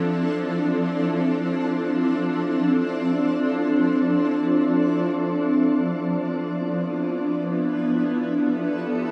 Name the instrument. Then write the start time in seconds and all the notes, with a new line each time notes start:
ambient pad
Already playing: F3 C4 D4 E4 A4
5.06 F3
5.74 B3
6.12 E4
8.08 A4
8.22 G4